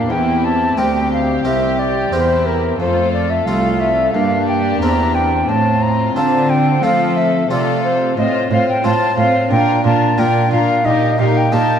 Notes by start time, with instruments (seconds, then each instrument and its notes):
Already playing: flute F5
0.10 cello section E2, harpsichord E2, viola section C4, violin section E4 G4, flute G5
0.44 flute A5
0.77 cello section D2, harpsichord D2 C4 G4 A#4, violin section G4, flute G5
1.12 flute F5
1.44 cello section C2, harpsichord C2 C4 G4 A#4, flute E5
1.79 flute D5
2.12 cello section E2, harpsichord E2 C4 G4 A#4, violin section E4, flute C5
2.46 flute A#4
2.79 cello section F2, harpsichord F2, viola section A3, violin section F4 A4, flute C5
3.12 flute D5
3.30 flute E5
3.45 cello section C2, harpsichord C2 C4 F4 A4, viola section A3, violin section F4, flute F5
3.80 flute E5
4.13 cello section G2, harpsichord G2, viola section A#3, violin section D4 G4, flute F5
4.47 flute G5
4.81 cello section E2, harpsichord E2 C4 E4 A#4, viola section C4, flute A#5
5.15 flute G5
5.48 cello section A2, harpsichord A2, viola section C4, violin section C4 F4, flute A5
5.82 flute A#5
6.16 cello section D3, harpsichord D3 C4 F4 A4, flute A5
6.49 flute G5
6.82 cello section F3, harpsichord F3 C4 F4 A4, viola section A3, violin section A4, flute F5
7.16 flute E5
7.50 cello section C3, harpsichord C3 C4 F4 A4, viola section A3, violin section F4 A4, flute D5
7.83 flute C5
8.17 cello section A2, harpsichord A2, viola section C4, violin section F4 C5, flute D#5
8.50 cello section A2, harpsichord A2, viola section C4, violin section F4 C5, flute F5
8.69 flute G5
8.84 cello section A2, harpsichord A2 C4 F4 C5, viola section C4, violin section F4 C5, flute A5
9.17 harpsichord A2, cello section A2, viola section C4, violin section F4 C5, flute F5
9.51 cello section A#2, harpsichord A#2, viola section D4, violin section F4 A#4, flute G5
9.84 cello section A#2, harpsichord A#2, viola section D4, violin section F4 A#4, flute A5
10.18 cello section A#2, harpsichord A#2 D4 F4 A#4, viola section D4, violin section F4 A#4, flute G5
10.51 harpsichord A#2, cello section A#2, viola section D4, violin section F4 A#4, flute F5
10.85 cello section A#2, harpsichord A#2, viola section D#4, violin section G4 A#4, flute D#5
11.18 harpsichord A#2, cello section A#2, viola section D#4, violin section G4 A#4, flute F5
11.37 flute G5
11.52 cello section A#2, harpsichord A#2 D#4 G4 A#4, viola section D#4, violin section G4 A#4, flute A5